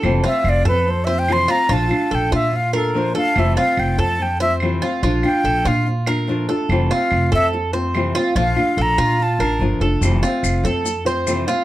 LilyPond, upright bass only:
\new Staff \with { instrumentName = "Upright bass" } { \clef bass \time 4/4 \key f \major \tempo 4 = 144 f,,8 r8 f,,8 f,2 r8 | bes,,8 r8 bes,,8 bes,2 r8 | f,,8 r8 f,,8 f,2 r8 | bes,,8 r8 bes,,8 bes,2 r8 |
f,,8 r8 f,,8 f,2 r8 | bes,,8 r8 bes,,8 bes,4 a,,8 g,,8 f,,8 | f,,8 r8 f,,8 f,2 r8 | }